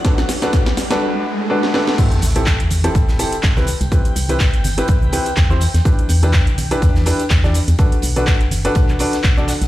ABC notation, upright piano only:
X:1
M:4/4
L:1/16
Q:"Swing 16ths" 1/4=124
K:Ador
V:1 name="Upright piano"
[DFAB]2 z [DFAB]2 z2 [DFAB]3 z2 [DFAB]2 [DFAB]2 | [CEGA]2 z [CEGA]2 z2 [CEGA]3 [CEGA] z2 [CEGB] z2 | [CEGB]2 z [CEGB]2 z2 [CEGB]3 [CEGB] z2 [CEGc] z2 | [DEGB]2 z [DEGB]2 z2 [DEGB]3 [DEGB] z2 [DEGd] z2 |
[DFAB]2 z [DFAB]2 z2 [DFAB]3 [DFAB] z2 [DFAd] z2 |]